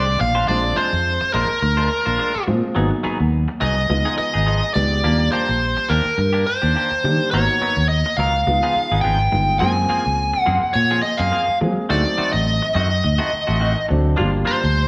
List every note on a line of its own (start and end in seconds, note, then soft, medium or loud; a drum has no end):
0.00 0.17 C2 medium
0.00 0.20 D5 medium
0.06 muted clean electric guitar stroke soft
0.19 0.46 A#1 medium
0.19 0.47 F5 medium
0.19 muted clean electric guitar stroke soft
0.35 0.47 D4 soft
0.35 0.48 G4 soft
0.35 0.47 C5 medium
0.48 0.74 A#1 medium
0.48 1.39 F3 medium
0.48 0.63 G#3 medium
0.48 1.39 G#3 medium
0.48 1.40 C4 soft
0.48 0.63 D4 medium
0.48 1.40 D4 medium
0.48 0.63 F4 medium
0.48 0.63 C5 medium
0.48 0.77 D5 medium
0.64 muted clean electric guitar stroke soft
0.76 0.92 G#3 medium
0.76 0.92 D4 medium
0.76 0.92 F4 medium
0.76 1.33 C5 medium
0.76 0.91 C5 medium
0.76 muted fretless electric bass stroke soft
0.93 1.18 F2 medium
0.93 muted clean electric guitar stroke soft
1.21 muted clean electric guitar stroke soft
1.21 muted fretless electric bass stroke soft
1.34 1.48 A#1 medium
1.34 1.49 G#3 medium
1.34 1.49 D4 medium
1.34 1.48 F4 medium
1.34 2.44 A#4 medium
1.34 1.48 C5 medium
1.49 muted clean electric guitar stroke soft
1.49 muted fretless electric bass stroke soft
1.62 1.88 D2 medium
1.62 muted clean electric guitar stroke soft
1.77 1.89 G#3 soft
1.77 1.89 D4 soft
1.77 1.90 F4 soft
1.77 1.90 C5 medium
1.90 muted clean electric guitar stroke soft
2.06 2.18 A#1 medium
2.06 2.18 D4 soft
2.06 2.18 F4 soft
2.06 2.18 C5 soft
2.18 2.34 G#3 medium
2.18 2.33 D4 medium
2.18 2.33 F4 medium
2.18 2.32 C5 medium
2.33 muted clean electric guitar stroke soft
2.33 muted fretless electric bass stroke soft
2.47 2.62 A#2 medium
2.47 2.71 F3 medium
2.47 2.71 G#3 medium
2.47 2.71 C4 medium
2.47 2.71 F4 medium
2.47 muted clean electric guitar stroke soft
2.75 2.90 G#1 medium
2.75 2.91 F#3 medium
2.75 3.67 F#3 medium
2.75 3.67 A#3 medium
2.75 2.90 B3 medium
2.75 3.67 B3 medium
2.75 2.90 D#4 medium
2.75 3.67 D#4 medium
2.75 2.89 G#4 medium
2.91 muted clean electric guitar stroke soft
3.03 3.20 F#3 medium
3.03 3.20 B3 medium
3.03 3.19 D#4 medium
3.03 3.19 G#4 medium
3.03 muted fretless electric bass stroke soft
3.20 3.46 D#2 medium
3.20 muted clean electric guitar stroke soft
3.48 muted clean electric guitar stroke soft
3.60 3.88 C2 medium
3.60 3.77 F#3 medium
3.60 3.76 B3 soft
3.60 3.75 D#4 medium
3.60 3.75 G#4 medium
3.60 4.14 D#5 medium
3.76 muted clean electric guitar stroke soft
3.89 4.04 C#2 medium
3.89 4.59 G#3 medium
3.89 4.59 B3 medium
3.89 4.59 D#4 medium
3.89 4.60 F4 medium
3.89 muted clean electric guitar stroke soft
4.05 4.17 F3 soft
4.05 4.17 B3 medium
4.05 4.17 D#4 medium
4.05 4.17 G#4 medium
4.18 4.74 D#5 medium
4.18 muted clean electric guitar stroke soft
4.18 muted fretless electric bass stroke soft
4.34 4.61 G#1 medium
4.34 4.45 B3 soft
4.34 4.46 D#4 soft
4.34 4.46 G#4 soft
4.46 4.62 F3 medium
4.46 4.62 B3 medium
4.46 4.61 D#4 medium
4.46 4.61 G#4 medium
4.62 muted clean electric guitar stroke soft
4.74 5.02 C#2 medium
4.74 4.99 G#3 medium
4.74 4.99 B3 medium
4.74 4.99 D#4 medium
4.74 4.99 G4 medium
4.74 5.31 D5 medium
4.74 muted clean electric guitar stroke soft
5.04 5.30 D#2 medium
5.04 5.95 G3 medium
5.04 5.20 A#3 medium
5.04 5.95 A#3 medium
5.04 5.95 D4 medium
5.04 5.19 D4 medium
5.04 5.95 F4 medium
5.04 5.18 G4 medium
5.19 muted clean electric guitar stroke soft
5.32 5.48 A#3 medium
5.32 5.48 D4 medium
5.32 5.47 G4 medium
5.32 5.91 C5 medium
5.48 5.75 A#1 medium
5.48 muted clean electric guitar stroke soft
5.77 muted clean electric guitar stroke soft
5.77 muted fretless electric bass stroke soft
5.89 6.04 D#2 medium
5.89 6.05 A#3 medium
5.89 6.05 D4 medium
5.89 6.04 G4 medium
5.89 6.49 A#4 medium
6.05 muted clean electric guitar stroke soft
6.05 muted fretless electric bass stroke soft
6.18 6.44 G2 medium
6.18 muted clean electric guitar stroke soft
6.33 6.44 A#3 soft
6.33 6.45 D4 soft
6.33 6.45 G4 medium
6.46 7.31 C5 medium
6.46 muted clean electric guitar stroke soft
6.62 6.75 D#2 medium
6.62 6.75 D4 soft
6.62 6.75 G4 soft
6.75 6.91 A#3 soft
6.75 6.90 D4 medium
6.75 6.90 G4 medium
6.91 muted clean electric guitar stroke soft
6.91 muted fretless electric bass stroke soft
7.04 7.18 D#3 medium
7.04 7.27 G3 medium
7.04 7.28 A#3 medium
7.04 7.27 D4 medium
7.04 7.28 G4 medium
7.04 muted clean electric guitar stroke soft
7.31 7.47 G#1 medium
7.31 7.49 F#3 medium
7.31 8.24 A#3 medium
7.31 8.24 B3 medium
7.31 7.48 B3 medium
7.31 8.24 D#4 medium
7.31 7.48 D#4 medium
7.31 8.25 F#4 medium
7.31 7.47 A#4 medium
7.31 7.88 C#5 medium
7.49 muted clean electric guitar stroke soft
7.61 7.77 F#3 medium
7.61 7.76 B3 medium
7.61 7.76 D#4 medium
7.61 7.76 A#4 medium
7.61 muted fretless electric bass stroke soft
7.77 8.03 D#2 medium
7.77 muted clean electric guitar stroke soft
7.89 8.16 D#5 medium
8.06 muted clean electric guitar stroke soft
8.17 8.44 C#2 medium
8.17 8.34 F#3 medium
8.17 8.33 B3 medium
8.17 8.33 D#4 medium
8.17 8.33 A#4 medium
8.17 9.01 F5 medium
8.34 muted clean electric guitar stroke soft
8.47 8.61 C#2 medium
8.47 9.17 G#3 medium
8.47 9.17 B3 medium
8.47 9.17 D#4 medium
8.47 9.17 F4 medium
8.47 muted clean electric guitar stroke soft
8.63 8.74 F3 soft
8.63 8.75 B3 soft
8.63 8.75 D#4 medium
8.63 8.75 G#4 medium
8.76 muted clean electric guitar stroke soft
8.76 muted fretless electric bass stroke soft
8.92 9.03 G#1 medium
8.92 9.03 B3 soft
8.92 9.03 D#4 soft
8.92 9.03 G#4 soft
9.01 9.30 G#1 medium
9.01 9.19 F3 soft
9.01 9.18 B3 medium
9.01 9.18 D#4 medium
9.01 9.18 G#4 medium
9.01 9.59 G5 medium
9.19 muted clean electric guitar stroke soft
9.32 9.58 G1 medium
9.32 9.55 G#3 medium
9.32 9.56 B3 medium
9.32 9.56 D#4 soft
9.32 9.56 F4 medium
9.32 muted clean electric guitar stroke soft
9.59 9.87 F#2 medium
9.59 9.76 F3 medium
9.59 10.52 G#3 medium
9.59 9.76 A#3 medium
9.59 10.52 A#3 medium
9.59 9.75 C4 medium
9.59 10.53 C4 medium
9.59 10.52 F4 medium
9.59 9.75 G#4 medium
9.59 10.41 G#5 medium
9.76 muted clean electric guitar stroke soft
9.89 10.05 F3 medium
9.89 10.05 A#3 medium
9.89 10.04 C4 medium
9.89 10.04 G#4 medium
9.89 muted fretless electric bass stroke soft
10.05 10.32 C#2 medium
10.05 muted clean electric guitar stroke soft
10.34 muted clean electric guitar stroke soft
10.34 muted fretless electric bass stroke soft
10.41 10.78 F#5 medium
10.46 10.61 F#2 medium
10.46 10.62 F3 medium
10.46 10.61 A#3 medium
10.46 10.61 C4 medium
10.46 10.61 G#4 medium
10.62 muted clean electric guitar stroke soft
10.62 muted fretless electric bass stroke soft
10.74 11.01 A#2 medium
10.74 11.02 C#5 medium
10.74 muted clean electric guitar stroke soft
10.91 11.03 F3 soft
10.91 11.03 A#3 soft
10.91 11.03 C4 medium
10.91 11.03 G#4 medium
11.02 11.19 D#5 medium
11.02 muted clean electric guitar stroke soft
11.17 11.31 F#2 medium
11.17 11.31 A#3 soft
11.17 11.31 C4 soft
11.17 11.31 G#4 soft
11.17 11.57 F5 medium
11.32 11.48 F3 medium
11.32 11.47 A#3 medium
11.32 11.47 C4 medium
11.32 11.46 G#4 medium
11.48 muted clean electric guitar stroke soft
11.48 muted fretless electric bass stroke soft
11.61 11.76 F#3 medium
11.61 11.84 G#3 medium
11.61 11.84 A#3 medium
11.61 11.85 C4 medium
11.61 11.84 G#4 medium
11.61 muted clean electric guitar stroke soft
11.89 12.04 D2 medium
11.89 12.05 D#3 medium
11.89 12.81 F#3 medium
11.89 12.05 A3 medium
11.89 12.81 A3 medium
11.89 12.04 C4 medium
11.89 12.81 C4 medium
11.89 12.81 D#4 medium
11.89 12.04 F#4 medium
11.89 12.32 D5 medium
12.05 muted clean electric guitar stroke soft
12.18 12.34 D#3 medium
12.18 12.34 A3 medium
12.18 12.34 C4 medium
12.18 12.33 F#4 medium
12.18 muted fretless electric bass stroke soft
12.33 12.60 A1 medium
12.33 12.74 D#5 medium
12.33 muted clean electric guitar stroke soft
12.62 muted clean electric guitar stroke soft
12.75 13.01 F#2 medium
12.75 12.91 D#3 medium
12.75 12.90 A3 medium
12.75 12.90 C4 medium
12.75 12.90 F#4 medium
12.75 13.85 D#5 medium
12.91 muted clean electric guitar stroke soft
13.04 13.18 D2 medium
13.04 muted clean electric guitar stroke soft
13.18 13.30 D#3 soft
13.18 13.31 A3 medium
13.18 13.31 C4 medium
13.18 13.31 F#4 medium
13.33 muted fretless electric bass stroke soft
13.47 13.74 A1 medium
13.47 13.59 A3 soft
13.47 13.59 C4 soft
13.47 13.60 F#4 soft
13.60 13.76 D#3 medium
13.60 13.75 A3 medium
13.60 13.74 C4 medium
13.60 13.74 F#4 medium
13.76 muted clean electric guitar stroke soft
13.88 14.16 D2 medium
13.88 14.13 F#3 medium
13.88 14.13 A3 medium
13.88 14.13 C4 medium
13.88 14.13 D4 medium
13.88 muted clean electric guitar stroke soft
14.17 14.45 G1 medium
14.17 14.33 F3 medium
14.17 14.88 G3 medium
14.17 14.32 A#3 medium
14.17 14.88 A#3 medium
14.17 14.31 D4 medium
14.17 14.88 D4 medium
14.17 14.31 F4 medium
14.17 14.88 F4 medium
14.32 muted clean electric guitar stroke soft
14.45 14.61 F3 medium
14.45 14.61 A#3 medium
14.45 14.60 D4 medium
14.45 14.60 F4 medium
14.45 14.88 C5 medium
14.61 14.88 D2 medium
14.61 muted clean electric guitar stroke soft